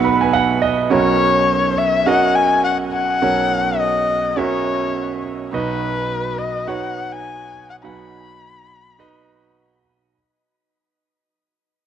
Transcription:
Already playing: B1 B2 B3 D#4 F#4 B4 D#5 E5 F#5
0.05 B5
0.21 G#5
0.33 F#5
0.62 D#5
0.90 B1 B2 C#4 F#4 A#4 C#5
1.78 E5
2.06 C#4 F#4 A#4 D#5 F#5
2.35 G#5
2.64 F#5
2.93 F#5
3.22 B1 B2 C#4 F#4 A#4 C#5
3.79 D#5
4.37 C#4 F#4 A#4 C#5 E5
5.53 B1 B2 D#4 F#4 B4 D#5
6.38 D#5
6.68 D#4 F#4 B4 C#5 F#5
7.13 G#5
7.70 F#5
7.83 B1 B2 D#4 F#4 B4 F#5 B5
8.99 D#4 F#4 B4 D#5

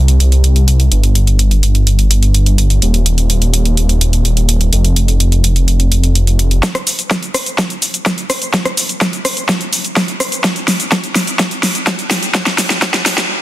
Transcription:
Already playing: C2
0.08 closed hi-hat
0.20 closed hi-hat
0.32 closed hi-hat
0.44 closed hi-hat
0.56 closed hi-hat
0.68 closed hi-hat
0.80 closed hi-hat
0.92 G1, closed hi-hat
1.03 closed hi-hat
1.15 closed hi-hat
1.27 closed hi-hat
1.39 closed hi-hat
1.51 closed hi-hat
1.63 closed hi-hat
1.75 closed hi-hat
1.87 closed hi-hat
1.99 closed hi-hat
2.11 closed hi-hat
2.23 closed hi-hat
2.34 closed hi-hat
2.46 closed hi-hat
2.58 closed hi-hat
2.70 closed hi-hat
2.82 D#1, closed hi-hat
2.94 closed hi-hat
3.06 closed hi-hat
3.18 closed hi-hat
3.30 closed hi-hat
3.42 closed hi-hat
3.54 closed hi-hat
3.65 closed hi-hat
3.77 closed hi-hat
3.89 closed hi-hat
4.01 closed hi-hat
4.13 closed hi-hat
4.25 closed hi-hat
4.37 closed hi-hat
4.49 closed hi-hat
4.61 closed hi-hat
4.73 F1, closed hi-hat
4.85 closed hi-hat
4.96 closed hi-hat
5.08 closed hi-hat
5.20 closed hi-hat
5.32 closed hi-hat
5.44 closed hi-hat
5.56 closed hi-hat
5.68 closed hi-hat
5.80 closed hi-hat
5.92 closed hi-hat
6.04 closed hi-hat
6.15 closed hi-hat
6.27 closed hi-hat
6.39 closed hi-hat
6.51 closed hi-hat
6.63 kick, snare, closed hi-hat, cabasa
6.75 cross-stick, closed hi-hat, cabasa
6.87 open hi-hat, cabasa
6.99 closed hi-hat, cabasa
7.11 kick, snare, closed hi-hat, cabasa
7.23 closed hi-hat, cabasa
7.34 cross-stick, open hi-hat, cabasa
7.46 closed hi-hat, cabasa
7.58 kick, snare, closed hi-hat, cabasa
7.70 closed hi-hat, cabasa
7.82 open hi-hat, cabasa
7.94 closed hi-hat, cabasa
8.06 kick, snare, closed hi-hat, cabasa
8.18 closed hi-hat, cabasa
8.30 cross-stick, open hi-hat, cabasa
8.42 closed hi-hat, cabasa
8.53 kick, snare, closed hi-hat, cabasa
8.65 cross-stick, closed hi-hat, cabasa
8.77 open hi-hat, cabasa
8.89 closed hi-hat, cabasa
9.01 kick, snare, closed hi-hat, cabasa
9.13 closed hi-hat, cabasa
9.25 cross-stick, open hi-hat, cabasa
9.37 closed hi-hat, cabasa
9.49 kick, snare, closed hi-hat, cabasa
9.61 closed hi-hat, cabasa
9.73 open hi-hat, cabasa
9.84 closed hi-hat, cabasa
9.96 kick, snare, open hi-hat, cabasa
10.08 closed hi-hat, cabasa
10.20 cross-stick, open hi-hat, cabasa
10.32 closed hi-hat, cabasa
10.44 kick, snare, closed hi-hat, cabasa
10.56 closed hi-hat, cabasa
10.68 snare, open hi-hat, cabasa
10.80 closed hi-hat, cabasa
10.92 kick, snare, closed hi-hat, cabasa
11.04 closed hi-hat, cabasa
11.15 snare, open hi-hat, cabasa
11.27 closed hi-hat, cabasa
11.39 kick, snare, closed hi-hat, cabasa
11.51 closed hi-hat, cabasa
11.63 snare, open hi-hat, cabasa
11.75 closed hi-hat, cabasa
11.87 kick, snare, closed hi-hat, cabasa
11.99 closed hi-hat, cabasa
12.11 snare, open hi-hat, cabasa
12.23 closed hi-hat, cabasa
12.34 kick, snare, closed hi-hat, cabasa
12.46 snare, closed hi-hat, cabasa
12.58 snare, open hi-hat, cabasa
12.70 snare, cabasa
12.82 kick, snare, closed hi-hat, cabasa
12.94 snare, closed hi-hat, cabasa
13.06 snare, open hi-hat, cabasa
13.18 snare, closed hi-hat, cabasa

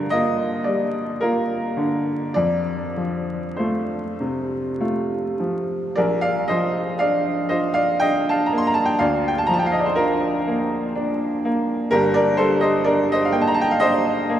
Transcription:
Already playing: G2 D3 A#4
0.10 A#3 F4 D#5
0.64 G3 D5
1.21 A#3 F4 A#4
1.77 D3
2.34 F2 D5
2.97 F3
3.56 A3 F4 C5
4.20 C3
4.80 A3 F4
5.40 F3
5.95 A#1 A#4 D5
6.21 D5 F5
6.48 F3 C5 D#5
6.99 D4 D5 F5
7.49 F4 C5 D#5
7.74 D5 F5
8.00 D4 D#5 G5
8.29 F5 A5
8.46 A#5
8.53 A#3
8.58 C6
8.67 A#5
8.74 A5
8.85 G5
8.99 D2 D5 F5
9.28 G5
9.38 A5
9.47 F3 A#5
9.54 A5
9.59 G5
9.66 F5
9.72 D#5
9.79 D5
9.86 C5
9.96 D4 F4 A#4
10.47 A#3
10.95 D4
11.45 A#3
11.91 G1 G2 G4 A#4
12.14 A#4 D5
12.37 G3 A4 C5
12.61 C5 D#5
12.84 D4 A#4 D5
13.12 C5 D#5
13.25 F5
13.32 A#3 G5
13.41 A5
13.47 A#5
13.54 A5
13.61 G5
13.71 F5
13.80 D4 C5 D#5
14.29 A#3

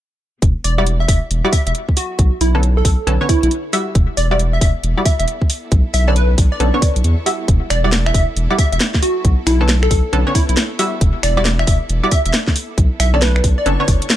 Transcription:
0.42 E1 B3, kick, closed hi-hat
0.64 E1 D5, open hi-hat
0.73 A4
0.78 G3 E4 F#4 D5
0.87 closed hi-hat
1.00 E5
1.08 E1 E5, kick, open hi-hat
1.13 D5
1.30 E1, closed hi-hat
1.45 G3 E4 F#4 D5
1.53 E5, kick, open hi-hat
1.66 E1 E5, closed hi-hat
1.75 closed hi-hat
1.89 kick
1.97 F#4, open hi-hat
2.19 B1, kick, closed hi-hat
2.41 B1 E4, open hi-hat
2.55 D3 B3 C#4 A4
2.63 closed hi-hat
2.77 A4
2.84 B1 C#5, kick, open hi-hat
3.07 B1 D3 B3 C#4 A4, closed hi-hat
3.21 D3 B3 C#4 C#5
3.29 E4, kick, open hi-hat
3.43 B1 E4, closed hi-hat
3.51 closed hi-hat
3.73 G3 E4 F#4 E5, open hi-hat
3.95 E1, kick, closed hi-hat
4.17 E1 D5, open hi-hat
4.31 G3 E4 F#4 D5
4.39 closed hi-hat
4.53 E5
4.61 E1 E5, kick, open hi-hat
4.66 D5
4.83 E1, closed hi-hat
4.97 G3 E4 F#4 D5
5.05 E5, kick, open hi-hat
5.19 E1 E5, closed hi-hat
5.28 closed hi-hat
5.42 kick
5.50 open hi-hat
5.72 B1, kick, closed hi-hat
5.94 B1 E5, open hi-hat
6.08 D3 B3 C#4 A4 D5
6.16 B4, closed hi-hat
6.38 B1 C#6, kick, open hi-hat
6.52 D5
6.60 B1 D3 B3 C#4 A4, closed hi-hat
6.74 D3 B3 C#4 C#5
6.82 kick, open hi-hat
6.96 B1, closed hi-hat
7.04 E2, closed hi-hat
7.26 G3 E4 F#4 E5, open hi-hat
7.48 E1, kick, closed hi-hat
7.70 E1 D5, finger snap, open hi-hat
7.79 D5
7.84 G3 E4 F#4 D5
7.93 snare, closed hi-hat
8.06 E5, finger snap
8.14 E1 E5, kick, open hi-hat
8.36 E1, closed hi-hat
8.50 G3 E4 F#4 D5
8.58 E5, kick, open hi-hat
8.72 E1 E5, closed hi-hat
8.80 snare, closed hi-hat
8.94 kick, snare
9.03 F#4, open hi-hat
9.25 B1, kick, closed hi-hat
9.47 B1 E4, finger snap, open hi-hat
9.61 D3 B3 C#4 A4
9.69 snare, closed hi-hat
9.83 A4, finger snap
9.91 B1 C#5, kick, open hi-hat
10.13 B1 D3 B3 C#4 A4, closed hi-hat
10.27 D3 B3 C#4 C#5
10.35 E4, kick, open hi-hat
10.49 B1 E4, closed hi-hat
10.57 snare, closed hi-hat
10.79 G3 E4 F#4 E5, open hi-hat
11.01 E1, kick, closed hi-hat
11.23 E1 D5, finger snap, open hi-hat
11.37 G3 E4 F#4 D5
11.45 snare, closed hi-hat
11.59 E5, finger snap
11.67 E1 E5, kick, open hi-hat
11.72 D5
11.89 E1, closed hi-hat
12.03 G3 E4 F#4 D5
12.11 E5, kick, open hi-hat
12.25 E1 E5, closed hi-hat
12.34 snare, closed hi-hat
12.48 kick, snare
12.56 open hi-hat
12.78 B1, kick, closed hi-hat
13.00 B1 E5, finger snap, open hi-hat
13.14 D3 B3 C#4 A4 D5
13.22 B4, snare, closed hi-hat
13.36 finger snap
13.44 B1 C#6, kick, open hi-hat
13.58 D5
13.66 F#1 D3 B3 C#4 A4, closed hi-hat
13.80 D3 B3 C#4 C#5
13.88 F#1, kick, open hi-hat
14.02 closed hi-hat
14.10 snare, closed hi-hat

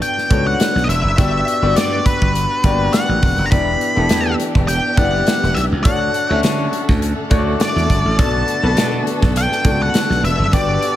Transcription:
Already playing: B3 D4 F#4 A4 D5
0.02 G5, closed hi-hat
0.18 snare
0.30 C#2 B3 D4 F#4 A4 C#5, kick, closed hi-hat
0.47 F#5
0.60 snare, closed hi-hat
0.75 B1, snare
0.84 D#5
0.88 E1 E5, closed hi-hat
1.04 F#1
1.17 G1 B3 D4 F#4 G4 D5 E5, kick, closed hi-hat
1.48 closed hi-hat
1.62 G1 B3 D4 F#4 G4 D5
1.76 G2 D5, snare, closed hi-hat
2.06 B4, kick, closed hi-hat
2.22 G1, kick
2.35 closed hi-hat
2.64 G1 A#3 D4 F#4 G4 D5, kick, closed hi-hat
2.70 B3
2.93 F#5, snare, closed hi-hat
3.09 A1
3.23 E1, kick, open hi-hat
3.38 F#1
3.46 A#5
3.51 E1 E3 B3 D4 E4 G4 D5 B5, kick, closed hi-hat
3.81 closed hi-hat
3.95 E1 B3 D4 E4 G4 A4
4.09 E2, snare, closed hi-hat
4.40 closed hi-hat
4.55 E1, kick
4.68 G5, closed hi-hat
4.97 F#1 B3 D4 E4 G4 D5 F#5, kick, closed hi-hat
5.27 snare, closed hi-hat
5.43 E1, snare
5.55 B1 E5, snare, closed hi-hat
5.72 C#2
5.84 D2 D3 A3 D4 F#4 A4 C#5 D5 F#5, kick, closed hi-hat
6.14 closed hi-hat
6.30 D2 C#4 D4 F#4 A4 E5
6.43 D3, snare, closed hi-hat
6.73 closed hi-hat
6.89 D2, kick, snare
7.02 closed hi-hat
7.30 D2 A3 D4 F#4 A4 C#5, kick, closed hi-hat
7.38 D5
7.60 D5, snare, closed hi-hat
7.76 E2, snare
7.90 G1, kick, closed hi-hat
8.05 A1
8.18 B1 B3 D4 F#4 A4 D5 A5, kick, closed hi-hat
8.48 closed hi-hat
8.63 B1 B3 D4 F#4 A4 B4
8.77 B2, snare, closed hi-hat
9.07 closed hi-hat
9.22 B1, kick, snare
9.36 G5, closed hi-hat
9.52 snare
9.64 C#2 B3 D4 F#4 A4 D5, kick, closed hi-hat
9.82 F#5
9.94 snare, closed hi-hat
10.10 B1, snare
10.23 E1 E5, closed hi-hat
10.39 F#1
10.53 G1 G3 B3 D4 F#4 G4 D5, kick, closed hi-hat
10.82 closed hi-hat

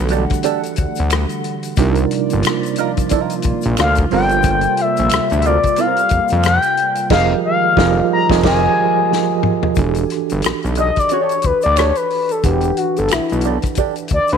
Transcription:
Already playing: D3 E3 G3 A3 D4 F#4 G4 A4 F#5
0.00 B1
0.08 D4 G4 A4, closed hi-hat, shaker
0.30 kick, cross-stick, closed hi-hat, shaker
0.43 D4 G4 A4, closed hi-hat, shaker
0.63 closed hi-hat, shaker
0.76 D2, kick, closed hi-hat, shaker
0.95 closed hi-hat, shaker
1.00 D2
1.10 finger snap, cross-stick, closed hi-hat, shaker
1.29 closed hi-hat, shaker
1.44 closed hi-hat
1.63 closed hi-hat, shaker
1.76 C2 C3 F3 G3 A#3 D4 D#4 F4 D5, kick, closed hi-hat, shaker
1.80 A#4
1.95 closed hi-hat, shaker
2.11 cross-stick, closed hi-hat
2.30 G1, closed hi-hat, shaker
2.43 finger snap, closed hi-hat, shaker
2.47 cross-stick
2.63 closed hi-hat, shaker
2.76 D#4 F4, closed hi-hat, shaker
2.80 A#4
2.97 kick, closed hi-hat, shaker
3.09 D#4 F4 A#4, kick, closed hi-hat, shaker
3.30 closed hi-hat, shaker
3.42 A#1, kick, closed hi-hat, shaker
3.61 closed hi-hat, shaker
3.66 A#1
3.77 D2 F5, finger snap, muted hollow-body jazz guitar stroke, cross-stick, closed hi-hat, shaker
3.95 kick, closed hi-hat, shaker
4.11 G1 C3 G3 C4 F4 A4 A#4 C5 G5, open hi-hat
4.29 closed hi-hat, shaker
4.43 kick, closed hi-hat, shaker
4.61 closed hi-hat, shaker
4.77 E5, cross-stick, closed hi-hat
4.97 A#1, closed hi-hat, shaker
5.09 D2, finger snap, closed hi-hat, shaker
5.14 cross-stick
5.30 D2, closed hi-hat, shaker
5.39 E5, closed hi-hat
5.45 C4 F4 A#4 D5, shaker
5.63 kick, closed hi-hat, shaker
5.76 C4 F4 A#4 F5, closed hi-hat, shaker
5.96 closed hi-hat, shaker
6.09 F2, kick, closed hi-hat, shaker
6.28 closed hi-hat, shaker
6.32 F2
6.43 G5, finger snap, cross-stick, closed hi-hat, shaker
6.62 closed hi-hat, shaker
6.77 closed hi-hat
6.95 closed hi-hat, shaker
7.10 F1 D#3 F3 G3 G#3 D#4 F4 G4 G#4 A#4 D#5 F5, kick, snare, crash
7.45 F5
7.77 F1 F3 D#4 F4 G4 G#4 A#4 D#5, kick, snare
8.13 A#5
8.30 F1 F3 D#4 F4 G4 G#4 A#4 D#5, kick, snare
8.43 F1 F3 D#4 F4 G4 G#4 A#4 D#5 G#5, kick, snare, crash
9.13 snare
9.43 mid tom
9.63 floor tom
9.75 E1 E3 D4 F#4, kick, closed hi-hat, shaker
9.79 G4 A4
9.94 closed hi-hat, shaker
10.10 cross-stick, closed hi-hat
10.29 G1, closed hi-hat, shaker
10.42 B1, finger snap, closed hi-hat, shaker
10.46 cross-stick
10.62 B1, closed hi-hat, shaker
10.75 D4 G4 D#5, closed hi-hat, shaker
10.79 A4
10.96 D5, kick, cross-stick, closed hi-hat, shaker
11.09 D4 G4 C#5, closed hi-hat, shaker
11.13 A4
11.29 closed hi-hat, shaker
11.42 D2 B4, kick, closed hi-hat, shaker
11.62 D5, closed hi-hat, shaker
11.66 D2
11.76 D4 G4 A4 C#5, finger snap, cross-stick, closed hi-hat, shaker
11.95 B4, closed hi-hat, shaker
12.10 open hi-hat
12.29 A4, closed hi-hat, shaker
12.43 E1 E3 D4 G4 B4 F#5, kick, closed hi-hat, shaker
12.61 closed hi-hat, shaker
12.77 F#4, closed hi-hat
12.96 G1 A4, closed hi-hat, shaker
13.08 E4, finger snap, closed hi-hat, shaker
13.13 B1, cross-stick
13.29 B1, closed hi-hat, shaker
13.41 closed hi-hat, shaker
13.45 D4 G4 A4
13.62 kick, cross-stick, closed hi-hat, shaker
13.75 D4 G4, kick, closed hi-hat, shaker
13.80 A4
13.96 closed hi-hat, shaker
14.08 kick, closed hi-hat, shaker
14.12 D2 D5
14.27 closed hi-hat, shaker
14.33 D2 C#5

